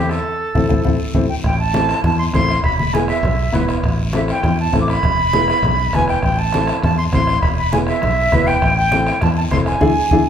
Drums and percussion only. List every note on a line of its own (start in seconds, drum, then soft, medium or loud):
0.09 bombo rim medium
0.09 short guiro medium
0.55 bombo low medium
0.55 high conga medium
0.55 long guiro loud
0.70 bombo low loud
0.70 high conga medium
0.70 long guiro medium
0.84 bombo low medium
0.84 high conga loud
0.84 long guiro medium
1.15 bombo low loud
1.15 high conga loud
1.15 long guiro medium
1.44 bombo low medium
1.44 bombo rim medium
1.44 high conga soft
1.44 long guiro medium
1.74 bombo rim medium
1.74 high conga medium
1.74 short guiro medium
1.89 bombo rim medium
1.89 short guiro medium
2.04 bombo rim medium
2.04 high conga soft
2.04 low conga medium
2.04 long guiro medium
2.34 bombo low medium
2.34 bombo rim medium
2.34 high conga medium
2.34 short guiro medium
2.48 bombo rim medium
2.48 short guiro medium
2.64 bombo low medium
2.64 bombo rim medium
2.64 high conga soft
2.64 long guiro medium
2.79 high conga medium
2.94 bombo rim medium
2.94 high conga medium
2.94 short guiro medium
3.08 bombo rim medium
3.08 short guiro medium
3.23 bombo rim medium
3.23 high conga soft
3.23 low conga medium
3.23 long guiro medium
3.53 bombo low medium
3.53 bombo rim medium
3.53 high conga medium
3.53 low conga medium
3.53 short guiro medium
3.68 bombo rim medium
3.68 short guiro medium
3.84 bombo low medium
3.84 bombo rim medium
3.84 high conga soft
3.84 long guiro medium
4.13 bombo rim medium
4.13 high conga loud
4.13 short guiro medium
4.28 bombo rim medium
4.28 short guiro medium
4.43 bombo rim medium
4.43 high conga soft
4.43 low conga medium
4.43 long guiro medium
4.73 bombo low medium
4.73 bombo rim medium
4.73 high conga medium
4.73 short guiro medium
4.88 bombo rim medium
4.88 short guiro medium
5.03 bombo low medium
5.03 bombo rim medium
5.03 high conga soft
5.03 low conga medium
5.03 long guiro medium
5.33 bombo rim medium
5.33 high conga loud
5.33 short guiro medium
5.48 bombo rim medium
5.48 short guiro medium
5.63 bombo rim medium
5.63 high conga soft
5.63 low conga medium
5.63 long guiro medium
5.93 bombo low medium
5.93 bombo rim medium
5.93 high conga medium
5.93 short guiro medium
6.08 bombo rim medium
6.08 short guiro medium
6.23 bombo low medium
6.23 bombo rim medium
6.23 high conga soft
6.23 long guiro medium
6.52 bombo rim medium
6.52 high conga loud
6.52 short guiro medium
6.67 bombo rim medium
6.67 short guiro medium
6.83 bombo rim medium
6.83 high conga soft
6.83 low conga medium
6.83 long guiro medium
7.13 bombo low medium
7.13 bombo rim medium
7.13 high conga medium
7.13 short guiro medium
7.27 bombo rim medium
7.27 short guiro medium
7.43 bombo low medium
7.43 bombo rim medium
7.43 high conga soft
7.43 long guiro medium
7.73 bombo rim medium
7.73 high conga loud
7.73 short guiro medium
7.87 bombo rim medium
7.87 short guiro medium
8.02 bombo rim medium
8.02 high conga soft
8.02 low conga medium
8.02 long guiro medium
8.32 bombo low medium
8.32 bombo rim medium
8.32 high conga medium
8.32 short guiro medium
8.47 bombo rim medium
8.47 short guiro medium
8.62 bombo low medium
8.62 bombo rim medium
8.62 high conga soft
8.62 long guiro medium
8.92 bombo rim medium
8.92 high conga medium
8.92 short guiro medium
9.06 bombo rim medium
9.06 short guiro medium
9.21 bombo rim medium
9.21 high conga soft
9.21 low conga medium
9.21 long guiro medium
9.51 bombo low medium
9.51 bombo rim medium
9.51 high conga medium
9.51 short guiro medium
9.66 bombo rim medium
9.66 short guiro medium
9.81 bombo low loud
9.81 high conga loud
9.81 long guiro loud
10.11 bombo low medium
10.11 high conga loud
10.11 long guiro loud